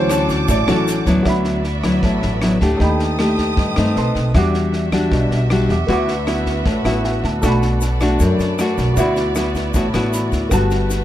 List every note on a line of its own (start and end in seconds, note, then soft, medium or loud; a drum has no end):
0.00 0.45 D2 loud
0.00 0.47 D3 medium
0.00 0.46 E3 soft
0.00 0.46 F#3 soft
0.00 0.46 C#4 soft
0.00 1.22 A4 medium
0.00 0.45 C5 medium
0.00 1.28 C#5 medium
0.00 1.22 F#5 medium
0.00 1.24 A5 medium
0.00 1.24 D6 medium
0.10 0.65 C#4 medium
0.10 0.65 F#4 medium
0.10 0.65 A4 medium
0.10 cross-stick medium
0.10 snare soft
0.10 shaker medium
0.29 kick soft
0.29 snare soft
0.29 shaker soft
0.48 0.67 A1 medium
0.48 1.24 A2 medium
0.48 1.03 D5 medium
0.48 kick medium
0.48 snare soft
0.48 shaker medium
0.68 1.04 A1 medium
0.68 0.85 E3 soft
0.68 0.85 F#3 soft
0.68 1.03 C#4 medium
0.68 0.86 C#4 soft
0.68 1.04 F#4 medium
0.68 1.04 A4 medium
0.68 cross-stick medium
0.68 snare soft
0.68 shaker soft
0.87 snare soft
0.87 shaker medium
1.06 1.24 D2 medium
1.06 1.62 F#3 medium
1.06 1.62 B3 medium
1.06 1.62 E4 medium
1.06 kick soft
1.06 snare soft
1.06 shaker soft
1.23 1.99 D2 medium
1.23 2.78 B3 medium
1.23 2.75 F#4 medium
1.23 2.77 F#4 medium
1.23 2.77 D5 medium
1.23 2.76 D5 soft
1.23 2.77 E5 medium
1.23 2.77 E5 soft
1.23 kick medium
1.23 cross-stick medium
1.23 snare soft
1.27 2.02 D3 medium
1.27 2.78 B5 medium
1.44 snare soft
1.64 snare soft
1.84 2.39 F#3 medium
1.84 2.39 B3 medium
1.84 2.39 E4 medium
1.84 kick soft
1.84 cross-stick medium
1.84 snare soft
2.03 2.21 A1 medium
2.03 2.78 A2 medium
2.03 kick medium
2.03 snare soft
2.22 2.59 A1 medium
2.22 snare soft
2.42 2.58 F#3 soft
2.42 2.58 B3 soft
2.42 2.58 E4 medium
2.42 cross-stick medium
2.42 snare soft
2.61 2.79 D2 medium
2.61 3.16 A3 medium
2.61 3.16 D4 medium
2.61 3.16 G4 medium
2.61 kick soft
2.61 snare soft
2.77 3.53 D#2 medium
2.77 3.55 D#3 soft
2.77 3.95 A3 medium
2.77 3.93 D#4 medium
2.77 3.94 G4 medium
2.77 3.92 A4 medium
2.77 4.32 B4 medium
2.77 4.32 D#6 medium
2.77 kick medium
2.77 snare soft
2.82 3.94 G5 medium
2.82 3.95 B5 medium
3.00 snare soft
3.19 3.73 A3 soft
3.19 3.74 D4 soft
3.19 3.74 G4 medium
3.19 cross-stick medium
3.19 snare soft
3.38 kick soft
3.38 snare soft
3.57 3.75 G2 medium
3.57 3.94 D#3 medium
3.57 kick medium
3.57 snare soft
3.76 3.95 G2 medium
3.76 4.32 A3 medium
3.76 4.32 C4 medium
3.76 4.32 D#4 medium
3.76 cross-stick medium
3.76 snare soft
3.96 4.14 B1 medium
3.96 4.34 C4 medium
3.96 4.34 A4 medium
3.96 4.34 B4 medium
3.96 4.35 D#5 soft
3.96 4.35 A5 soft
3.96 4.35 C6 medium
3.96 snare soft
4.15 4.33 B1 medium
4.15 kick soft
4.15 snare soft
4.32 5.07 E2 medium
4.32 5.10 E3 medium
4.32 4.89 G3 medium
4.32 5.86 D4 medium
4.32 4.90 D4 medium
4.32 8.92 F#4 medium
4.32 4.90 F#4 medium
4.32 7.39 E5 medium
4.32 5.67 E5 medium
4.32 kick medium
4.32 cross-stick medium
4.32 snare soft
4.36 5.68 F#5 soft
4.36 5.69 D6 medium
4.54 snare soft
4.73 snare soft
4.92 5.47 G3 medium
4.92 5.47 D4 medium
4.92 5.47 F#4 medium
4.92 kick soft
4.92 cross-stick medium
4.92 snare soft
5.11 5.29 B1 medium
5.11 5.87 B2 medium
5.11 kick medium
5.11 snare soft
5.31 5.67 B1 medium
5.31 snare soft
5.50 5.75 G3 medium
5.50 5.75 D4 medium
5.50 5.75 F#4 medium
5.50 cross-stick medium
5.50 snare soft
5.68 5.87 E2 medium
5.68 5.88 G4 soft
5.68 5.88 E5 soft
5.68 5.89 F#5 soft
5.68 5.90 D6 soft
5.68 kick soft
5.68 snare soft
5.87 6.62 D2 medium
5.87 6.63 D3 medium
5.87 6.13 B3 medium
5.87 7.42 D4 medium
5.87 6.13 E4 medium
5.87 6.14 F#4 medium
5.87 7.39 B4 medium
5.87 7.42 B4 medium
5.87 6.84 E5 medium
5.87 kick medium
5.87 snare soft
5.91 7.04 F#5 medium
5.91 7.42 D6 medium
6.08 snare soft
6.27 6.65 B3 soft
6.27 6.65 E4 medium
6.27 6.66 F#4 soft
6.27 cross-stick medium
6.27 snare soft
6.46 kick soft
6.46 snare soft
6.66 6.84 A1 medium
6.66 7.41 A2 medium
6.66 kick medium
6.66 snare soft
6.84 7.20 A1 medium
6.84 7.40 B3 medium
6.84 7.40 E4 medium
6.84 7.40 F#4 medium
6.84 7.03 E5 medium
6.84 cross-stick medium
6.84 snare soft
7.04 7.23 F#5 medium
7.04 snare soft
7.24 7.42 D2 medium
7.24 7.42 A5 soft
7.24 kick soft
7.24 snare soft
7.42 8.16 B1 medium
7.42 8.18 B2 medium
7.42 7.81 A3 medium
7.42 10.49 B3 medium
7.42 7.82 D4 medium
7.42 7.82 F#4 medium
7.42 8.93 A4 medium
7.42 8.96 A4 medium
7.42 10.49 D5 medium
7.42 8.94 D5 medium
7.42 kick medium
7.42 cross-stick medium
7.42 snare soft
7.42 shaker medium
7.46 8.96 F#5 medium
7.46 8.97 B5 medium
7.62 snare soft
7.62 shaker soft
7.81 snare soft
7.81 shaker medium
8.00 8.56 A3 medium
8.00 8.56 D4 medium
8.00 8.56 F#4 medium
8.00 kick soft
8.00 cross-stick medium
8.00 snare soft
8.00 shaker soft
8.20 8.38 F#2 medium
8.20 8.96 F#2 medium
8.20 kick medium
8.20 snare soft
8.20 shaker medium
8.39 8.75 F#2 medium
8.39 snare soft
8.39 shaker soft
8.59 8.94 A3 soft
8.59 8.95 D4 medium
8.59 8.95 F#4 medium
8.59 cross-stick medium
8.59 snare soft
8.59 shaker medium
8.78 8.96 B1 medium
8.78 kick soft
8.78 snare soft
8.78 shaker soft
8.93 9.70 D2 medium
8.93 10.50 E4 medium
8.93 10.47 F#4 medium
8.93 11.04 F#4 medium
8.93 10.48 D5 medium
8.93 kick medium
8.93 snare soft
8.93 shaker medium
8.98 9.73 D3 medium
8.98 9.33 B3 medium
8.98 9.33 E4 medium
8.98 9.34 F#4 medium
8.98 10.49 E5 medium
8.98 10.12 B5 medium
9.16 snare soft
9.16 shaker soft
9.35 9.71 B3 medium
9.35 9.72 E4 soft
9.35 9.72 F#4 medium
9.35 cross-stick medium
9.35 snare soft
9.35 shaker medium
9.55 kick soft
9.55 snare soft
9.55 shaker soft
9.74 9.92 A1 medium
9.74 10.50 A2 medium
9.74 9.86 B3 soft
9.74 9.86 E4 medium
9.74 9.87 F#4 medium
9.74 kick medium
9.74 snare soft
9.74 shaker medium
9.94 10.30 A1 medium
9.94 10.49 B3 medium
9.94 10.49 E4 medium
9.94 10.49 F#4 medium
9.94 cross-stick medium
9.94 snare soft
9.94 shaker soft
10.13 10.49 B5 medium
10.13 snare soft
10.13 shaker medium
10.32 10.50 D2 medium
10.32 kick soft
10.32 snare soft
10.32 shaker soft
10.50 11.04 G1 loud
10.50 11.04 G3 medium
10.50 11.04 A3 medium
10.50 11.04 B3 medium
10.50 11.04 F#4 medium
10.50 11.04 A4 medium
10.50 11.04 B4 medium
10.50 11.04 F#5 medium
10.50 kick medium
10.50 cross-stick medium
10.50 snare soft
10.50 shaker medium
10.54 11.04 A5 medium
10.70 snare soft
10.70 shaker soft
10.90 snare soft
10.90 shaker medium